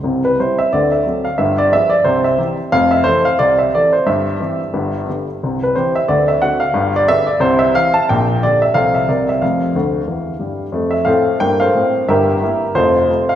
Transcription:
X:1
M:4/4
L:1/8
Q:"Swing" 1/4=179
K:C
V:1 name="Grand piano"
z B c e d e2 f | e d e d c e2 z | f e c f d e d c | e6 z2 |
z B c e d e ^f =f- | f d e d c e f a | [K:F] g2 d e f e d e | f6- f z |
z e [Acf]2 g [Acf]3 | [GBe]4 [FAc]3 f |]
V:2 name="Grand piano" clef=bass
[C,,C,]2 [G,CE]2 [D,,D,]2 [^F,CA]2 | [G,,,G,,]2 [F,B,_A]2 [C,,C,]2 [E,CG]2 | [F,,,F,,]2 [E,CA]2 [C,,C,]2 [E,CA]2 | [G,,,G,,]2 [E,CG]2 [G,,,G,,]2 [D,B,G]2 |
[C,,C,]2 [E,CG]2 [D,,D,]2 [D,C^F]2 | [G,,,G,,]2 [D,B,_A]2 [C,,C,]2 [E,CG]2 | [K:F] [B,,,B,,]2 [D,DG]2 [C,,C,F,CA]2 [C,,C,G,CB]2 | [F,,,F,,]2 [D,,D,]2 [E,,E,]2 [G,,G,]2 |
[F,,A,]2 [A,,C]2 [G,,B,]2 [A,,C]2 | [G,,,G,,]2 [B,E]2 [F,,,F,,]2 [A,CF]2 |]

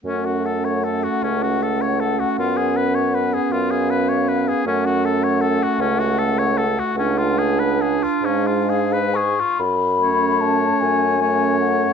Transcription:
X:1
M:6/8
L:1/16
Q:3/8=51
K:F#m
V:1 name="Flute"
f12- | f6 ^e6 | f12- | f4 z2 ^e4 c'2 |
b4 a2 g4 f2 |]
V:2 name="Oboe"
C F A c A F C F A c A F | ^E G B c B G E G B c B G | C F A c A F C F A c A F | C ^E G B G E C E G B G E |
z2 c6 c4 |]
V:3 name="Clarinet"
C12- | C12 | C8- C2 z2 | D8- D2 z2 |
z2 C6 C4 |]
V:4 name="French horn"
A,12 | B,12 | A,12- | A,4 z2 G,4 z2 |
z2 A,6 A,4 |]
V:5 name="Bassoon" clef=bass
F,,6 C,,6 | F,,6 F,,6 | F,,6 C,,6 | C,,6 G,,6 |
F,,6 F,,6 |]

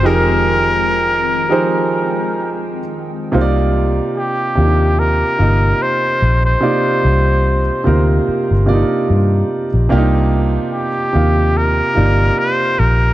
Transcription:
X:1
M:4/4
L:1/16
Q:"Swing 16ths" 1/4=73
K:Cm
V:1 name="Muted trumpet"
B12 z4 | z4 G4 B4 c3 c- | c6- c z8 z | z4 G4 B4 c2 B2 |]
V:2 name="Grand piano"
[F,EGAB]6 z [F,EGAc]6 z3 | [C,B,EFcd]4- [C,B,EFcd] z [C,B,DEFG]3 z [C,B,EFe]4- [C,B,EFe] z | [C,B,EFd]4- [C,B,EFd] z [C,B,EFB]3 z [C,B,DEFd]4- [C,B,DEFd] z | [C,B,DEFG]4- [C,B,DEFG] z [C,B,EFf]3 z [C,B,EFd]4- [C,B,EFd] z |]
V:3 name="Analog synth pad"
[E,A,Cg]16 | z16 | z16 | z16 |]
V:4 name="Fingered electric bass" clef=bass
F,,,6- F,,, z8 z | C,,4 z2 E,,4 G,,,2 z2 B,,,2 | z2 C,,4 D,,2 z G,,,2 z G,,2 z B,,, | C,,4 z2 E,,4 G,,,2 z2 B,,,2 |]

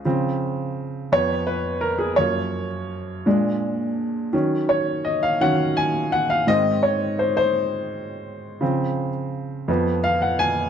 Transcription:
X:1
M:6/8
L:1/16
Q:3/8=56
K:Db
V:1 name="Upright piano"
z6 d2 _c2 B A | d4 z8 | z2 d2 e f g2 a2 g f | e2 d2 c c6- c- |
c3 z4 z f g a2 |]
V:2 name="Upright piano" clef=bass
[D,F,C]6 [F,,F,_C]6 | [G,,F,B,]2 z4 [B,,A,=D]6 | [E,G,D]6 [E,G,D]2 z4 | [A,,E,C]2 z8 z2 |
[D,F,C]2 z4 [F,,F,_C]6 |]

